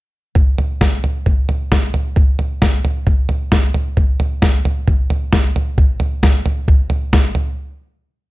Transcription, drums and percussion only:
0.35 kick, floor tom
0.58 floor tom
0.81 kick, snare, floor tom
1.04 floor tom
1.26 kick, floor tom
1.49 floor tom
1.72 kick, snare, floor tom
1.94 floor tom
2.16 kick, floor tom
2.39 floor tom
2.62 kick, snare, floor tom
2.85 floor tom
3.07 kick, floor tom
3.29 floor tom
3.52 kick, snare, floor tom
3.74 floor tom
3.97 kick, floor tom
4.20 floor tom
4.42 kick, snare, floor tom
4.65 floor tom
4.88 kick, floor tom
5.10 floor tom
5.33 kick, snare, floor tom
5.56 floor tom
5.78 kick, floor tom
6.00 floor tom
6.23 kick, snare, floor tom
6.46 floor tom
6.68 kick, floor tom
6.90 floor tom
7.13 kick, snare, floor tom
7.35 floor tom

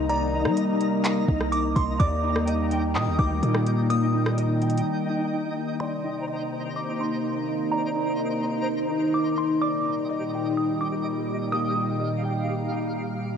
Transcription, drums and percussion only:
0.09 closed hi-hat
0.45 cross-stick
0.57 closed hi-hat
0.81 closed hi-hat
1.05 clap, closed hi-hat
1.28 kick
1.41 cross-stick
1.52 closed hi-hat
1.76 kick, closed hi-hat
2.00 kick, closed hi-hat
2.36 cross-stick
2.48 closed hi-hat
2.71 closed hi-hat
2.95 clap, closed hi-hat
3.19 kick
3.43 closed hi-hat
3.55 cross-stick
3.67 closed hi-hat
3.90 closed hi-hat
4.26 cross-stick
4.38 closed hi-hat
4.62 closed hi-hat, open hi-hat
4.70 closed hi-hat
4.78 closed hi-hat

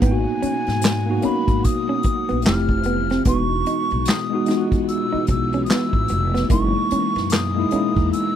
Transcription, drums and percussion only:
0.02 kick, closed hi-hat
0.43 closed hi-hat
0.67 snare, closed hi-hat
0.81 snare, clap, closed hi-hat
1.22 closed hi-hat
1.48 kick, closed hi-hat
1.64 kick, closed hi-hat
2.03 kick, closed hi-hat
2.29 closed hi-hat
2.42 closed hi-hat
2.46 snare, clap
2.69 kick
2.83 closed hi-hat
3.10 snare, closed hi-hat
3.25 kick, closed hi-hat
3.66 closed hi-hat
3.90 closed hi-hat
4.05 snare, clap, closed hi-hat
4.46 snare, closed hi-hat
4.72 kick, closed hi-hat
4.89 closed hi-hat
5.27 kick, closed hi-hat
5.53 closed hi-hat
5.66 closed hi-hat
5.70 snare, clap
5.93 kick
6.08 closed hi-hat
6.35 snare, closed hi-hat
6.50 kick, closed hi-hat
6.91 closed hi-hat
7.15 snare, closed hi-hat
7.30 snare, clap, closed hi-hat
7.71 closed hi-hat
7.96 kick
8.13 closed hi-hat

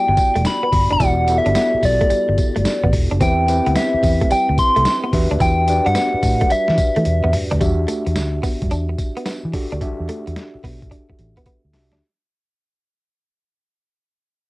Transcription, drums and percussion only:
0.17 kick, closed hi-hat, tambourine
0.36 closed hi-hat
0.45 snare, closed hi-hat, tambourine
0.72 kick, open hi-hat
0.91 closed hi-hat
1.00 kick, closed hi-hat, tambourine
1.28 closed hi-hat, tambourine
1.46 closed hi-hat
1.55 snare, closed hi-hat, tambourine
1.83 kick, open hi-hat, tambourine
2.01 kick, closed hi-hat
2.10 closed hi-hat, tambourine
2.38 kick, closed hi-hat, tambourine
2.56 closed hi-hat
2.65 snare, closed hi-hat, tambourine
2.84 kick
2.93 kick, open hi-hat
3.12 closed hi-hat
3.21 kick, closed hi-hat, tambourine
3.48 closed hi-hat, tambourine
3.66 closed hi-hat
3.76 snare, closed hi-hat, tambourine
4.03 kick, open hi-hat, tambourine
4.22 kick, closed hi-hat
4.31 closed hi-hat, tambourine
4.58 kick, closed hi-hat, tambourine
4.77 closed hi-hat
4.85 snare, closed hi-hat, tambourine
5.13 kick, open hi-hat
5.31 closed hi-hat
5.40 kick, closed hi-hat, tambourine
5.68 closed hi-hat, tambourine
5.86 closed hi-hat
5.95 snare, closed hi-hat, tambourine
6.23 kick, open hi-hat, tambourine
6.41 kick, closed hi-hat
6.50 closed hi-hat, tambourine
6.68 snare
6.78 kick, closed hi-hat, tambourine
6.96 closed hi-hat
7.05 closed hi-hat, high tom
7.24 mid tom
7.33 mid tom, open hi-hat
7.51 closed hi-hat, floor tom
7.61 kick, closed hi-hat, tambourine
7.88 closed hi-hat, tambourine
8.07 closed hi-hat
8.16 snare, closed hi-hat, tambourine
8.43 kick, open hi-hat, tambourine
8.62 kick, closed hi-hat
8.71 closed hi-hat, tambourine
8.98 kick, closed hi-hat, tambourine
9.17 closed hi-hat
9.26 snare, closed hi-hat, tambourine
9.54 kick, open hi-hat
9.72 closed hi-hat
9.81 kick, closed hi-hat
10.09 closed hi-hat
10.27 closed hi-hat
10.36 snare, closed hi-hat
10.64 kick, open hi-hat
10.82 kick, closed hi-hat
10.91 kick, closed hi-hat
11.10 kick
11.19 closed hi-hat
11.37 kick, closed hi-hat
11.46 kick, closed hi-hat
11.73 snare, open hi-hat
11.92 snare, closed hi-hat

